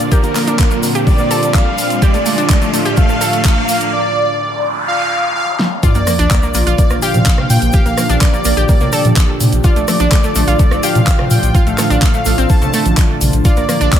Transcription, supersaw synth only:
Already playing: D5
0.12 A#4
1.07 D5
1.55 F5
2.02 D5
2.98 F5
3.45 F5
3.93 D5
4.88 F5
5.35 F5
5.83 D5
6.78 D5
7.02 F5
7.50 G5
7.74 F5
8.21 D5
8.69 D5
9.64 D5
10.60 D5
10.83 F5
11.31 G5
11.55 F5
12.02 F5
12.50 A5
13.45 D5

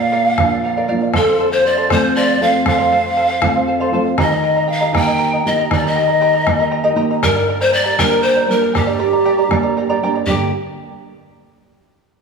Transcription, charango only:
0.00 D5 F5
0.12 A#4 D5 F5
0.25 D5 F5
0.39 A#4 D5 F5
0.52 D5 F5
0.64 A#4 D5 F5
0.77 A#4 D5 F5
0.88 A#4 D5 F5
1.01 D5 F5
1.14 A4 C5 F5
1.27 C5 F5
1.39 A4 C5 F5
1.52 C5 F5
1.64 A4 C5 F5
1.77 A4 C5 F5
1.89 A4 C5 F5
2.03 C5 F5
2.16 A4 C5 F5
2.29 C5 F5
2.41 A4 C5 F5
2.53 C5 F5
2.67 A4 C5 F5
2.78 A4 C5 F5
2.92 A4 C5 F5
3.05 C5 F5
3.17 A4 C5 F5
3.29 C5 F5
3.41 A4 C5 F5
3.54 C5 F5
3.67 A4 C5 F5
3.80 A4 C5 F5
3.93 A4 C5 F5
4.05 C5 F5
4.18 G4 A#4 D#5 G5 A#5
4.30 A#4 D#5 A#5
4.43 A#4 D#5 G5 A#5
4.56 A#4 D#5 A#5
4.68 A#4 D#5 G5 A#5
4.81 G4 A#4 D#5 G5 A#5
4.93 G4 A#4 D#5 G5 A#5
5.06 A#4 D#5 A#5
5.19 G4 A#4 D#5 G5 A#5
5.33 A#4 D#5 A#5
5.46 A#4 D#5 G5 A#5
5.59 A#4 D#5 A#5
5.70 A#4 D#5 G5 A#5
5.83 G4 A#4 D#5 G5 A#5
5.96 G4 A#4 D#5 G5 A#5
6.08 A#4 D#5 A#5
6.21 G4 A#4 D#5 G5 A#5
6.34 A#4 D#5 A#5
6.46 A#4 D#5 G5 A#5
6.60 A#4 D#5 A#5
6.71 A#4 D#5 G5 A#5
6.84 G4 A#4 D#5 G5 A#5
6.96 G4 A#4 D#5 G5 A#5
7.11 A#4 D#5 A#5
7.23 G4 A#4 D5 G5 A#5
7.35 A#4 D5 A#5
7.48 A#4 D5 G5 A#5
7.60 A#4 D5 A#5
7.72 A#4 D5 G5 A#5
7.84 G4 A#4 D5 G5 A#5
7.98 G4 A#4 D5 G5 A#5
8.10 A#4 D5 A#5
8.24 G4 A#4 D5 G5 A#5
8.35 A#4 D5 A#5
8.48 A#4 D5 G5 A#5
8.62 A#4 D5 A#5
8.73 A#4 D5 G5 A#5
8.87 G4 A#4 D5 G5 A#5
8.99 G4 A#4 D5 G5 A#5
9.13 A#4 D5 A#5
9.25 G4 A#4 D5 G5 A#5
9.38 A#4 D5 A#5
9.52 A#4 D5 G5 A#5
9.63 A#4 D5 A#5
9.77 A#4 D5 G5 A#5
9.89 G4 A#4 D5 G5 A#5
10.03 G4 A#4 D5 G5 A#5
10.15 A#4 D5 A#5
10.27 G4 A#4 D5 G5 A#5

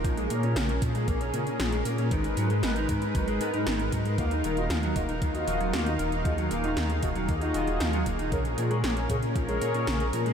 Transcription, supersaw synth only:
Already playing: A#4
0.05 C#4 G#4
2.12 G#3 D#4 A#4 B4
4.18 D#3 F5
6.25 G#4
8.32 C#4 A#4

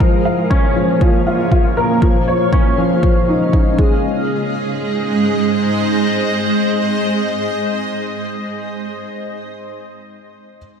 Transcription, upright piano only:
0.00 F3
0.25 F5
0.50 C#4
0.76 F3
1.01 F3
1.27 F4
1.52 F4
1.77 A#4
2.02 F3
2.28 C#5
2.53 C#4
2.78 F3
3.03 F3
3.28 D#4
3.53 D#4
3.78 G#3

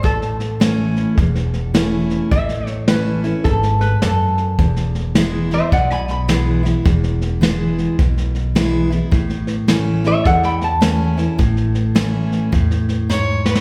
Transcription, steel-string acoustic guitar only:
0.03 A2
0.60 E3 A3 C#4 E4
1.19 E2
1.74 E3 A3 C#4 E4
2.32 A2
2.88 E3 A3 C#4 E4
3.24 C#4 E4
3.46 G#2
4.02 F#2
4.59 E2
5.15 E3 G#3 B3 E4
5.51 B3 E4
5.72 B2
6.28 E3 G#3 B3 E4
6.63 B3 E4
6.85 E2
7.41 E3 G#3 B3 E4
7.99 B2
8.55 E3 G#3 B3 E4
8.90 B3 E4
9.11 A2
9.68 E3 A3 C#4 E4
10.04 C#4 E4
10.26 E2
10.81 E3 A3 C#4 E4
11.17 C#4 E4
11.38 A2
11.95 E3 A3 C#4 E4
12.52 A2
13.09 G#2

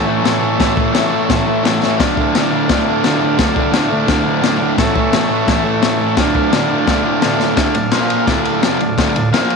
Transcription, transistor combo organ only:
Already playing: A4 C#5 E5
1.66 C#5
1.98 A4 D5 F5
4.78 A4 C#5 E5
6.18 A4 D5 F5
7.55 A4 D5 F5
7.92 F4 A#4 F5
8.25 F4 A4 D5
9.32 F4 A#4 F5

